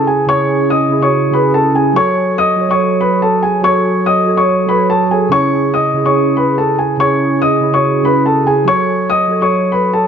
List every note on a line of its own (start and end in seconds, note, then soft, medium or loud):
0.00 0.26 C#3 loud
0.00 0.28 C#4 medium
0.00 0.29 E4 medium
0.00 0.31 G#4 loud
0.07 0.24 G#4 medium
0.07 0.24 G#5 medium
0.26 0.71 C#3 medium
0.26 0.72 C#4 medium
0.26 0.72 E4 medium
0.26 0.68 C#5 medium
0.26 0.68 C#6 loud
0.31 0.73 G#4 loud
0.70 1.01 D#5 medium
0.70 1.01 D#6 medium
0.89 0.98 C#3 medium
0.89 0.98 C#4 medium
0.89 0.99 E4 medium
0.93 1.00 G#4 medium
1.00 1.23 C#3 medium
1.00 1.24 C#4 medium
1.00 1.24 E4 medium
1.00 1.32 C#5 medium
1.00 1.31 C#6 medium
1.04 1.25 F#4 medium
1.31 1.62 C#3 medium
1.31 1.63 C#4 medium
1.31 1.63 E4 medium
1.31 1.51 B4 medium
1.31 1.50 B5 medium
1.36 1.64 G#4 medium
1.54 1.71 A4 medium
1.54 1.71 A5 medium
1.73 1.89 C#3 medium
1.73 1.90 C#4 medium
1.73 1.91 E4 medium
1.73 1.92 G#4 medium
1.73 1.92 G#5 medium
1.78 1.91 G#4 medium
1.93 2.38 F#3 medium
1.93 2.39 F#4 medium
1.93 2.40 A4 medium
1.93 2.36 C#5 medium
1.93 2.36 C#6 loud
1.98 2.41 C#5 loud
2.38 2.69 D#5 medium
2.38 2.68 D#6 loud
2.57 2.66 F#3 medium
2.57 2.66 F#4 medium
2.57 2.67 A4 medium
2.61 2.68 C#5 medium
2.69 3.27 F#3 medium
2.69 3.28 F#4 medium
2.69 3.29 A4 medium
2.69 3.00 C#5 medium
2.69 3.00 C#6 medium
2.73 3.30 C#5 medium
3.01 3.18 B4 medium
3.01 3.17 B5 medium
3.22 3.39 A4 medium
3.22 3.39 A5 medium
3.43 3.60 G#4 medium
3.43 3.59 G#5 medium
3.62 4.06 F#3 loud
3.62 4.07 F#4 medium
3.62 4.08 A4 medium
3.62 4.04 C#5 medium
3.62 4.04 C#6 loud
3.66 4.09 C#5 loud
4.06 4.37 D#5 medium
4.06 4.36 D#6 medium
4.25 4.34 F#3 medium
4.25 4.34 F#4 medium
4.25 4.35 A4 medium
4.29 4.36 C#5 medium
4.35 4.58 F#3 medium
4.35 4.59 F#4 medium
4.35 4.60 A4 medium
4.35 4.67 C#5 medium
4.35 4.67 C#6 medium
4.40 4.61 C#5 medium
4.67 4.97 F#3 medium
4.67 4.98 F#4 medium
4.67 4.99 A4 medium
4.67 4.86 B4 medium
4.67 4.85 B5 medium
4.71 5.00 C#5 medium
4.90 5.07 A4 medium
4.90 5.06 A5 medium
5.09 5.25 F#3 medium
5.09 5.26 F#4 medium
5.09 5.28 G#4 medium
5.09 5.27 A4 medium
5.09 5.28 G#5 medium
5.14 5.27 C#5 medium
5.29 5.74 C#3 loud
5.29 5.75 C#4 medium
5.29 5.76 E4 medium
5.29 5.72 C#5 medium
5.29 5.71 C#6 loud
5.34 5.76 G#4 loud
5.74 6.04 D#5 medium
5.74 6.04 D#6 medium
5.93 6.02 C#3 medium
5.93 6.03 C#4 medium
5.93 6.03 E4 medium
5.98 6.04 G#4 medium
6.04 6.63 C#3 medium
6.04 6.63 C#4 medium
6.04 6.64 E4 medium
6.04 6.35 C#5 medium
6.04 6.35 C#6 medium
6.08 6.65 G#4 medium
6.37 6.54 B4 medium
6.37 6.53 B5 medium
6.58 6.75 A4 medium
6.58 6.75 A5 medium
6.79 6.96 G#4 medium
6.79 6.95 G#5 medium
6.97 7.42 C#3 medium
6.97 7.43 C#4 loud
6.97 7.44 E4 medium
6.97 7.40 C#5 medium
6.97 7.39 C#6 loud
7.02 7.45 G#4 loud
7.42 7.72 D#5 medium
7.42 7.72 D#6 medium
7.60 7.69 C#3 medium
7.60 7.70 C#4 medium
7.60 7.71 E4 medium
7.65 7.71 G#4 medium
7.71 7.94 C#3 medium
7.71 7.95 C#4 medium
7.71 7.96 E4 medium
7.71 8.03 C#5 medium
7.71 8.03 C#6 medium
7.75 7.96 F#4 medium
8.03 8.33 C#3 medium
8.03 8.34 C#4 medium
8.03 8.35 E4 medium
8.03 8.22 B4 medium
8.03 8.21 B5 medium
8.07 8.35 G#4 medium
8.26 8.43 A4 medium
8.26 8.42 A5 medium
8.44 8.60 C#3 medium
8.44 8.61 C#4 medium
8.44 8.62 E4 medium
8.44 8.64 G#4 medium
8.44 8.63 G#5 medium
8.49 8.63 G#4 medium
8.65 9.10 F#3 medium
8.65 9.11 F#4 medium
8.65 9.11 A4 medium
8.65 9.08 C#5 medium
8.65 9.07 C#6 loud
8.69 9.12 C#5 loud
9.10 9.40 D#5 medium
9.10 9.40 D#6 loud
9.28 9.37 F#3 medium
9.28 9.38 F#4 medium
9.28 9.38 A4 medium
9.32 9.39 C#5 medium
9.40 9.99 F#3 medium
9.40 9.99 F#4 medium
9.40 10.00 A4 medium
9.40 9.71 C#5 medium
9.40 9.71 C#6 medium
9.45 10.01 C#5 medium
9.72 9.89 B4 medium
9.72 9.89 B5 medium
9.94 10.07 A4 medium
9.94 10.07 A5 medium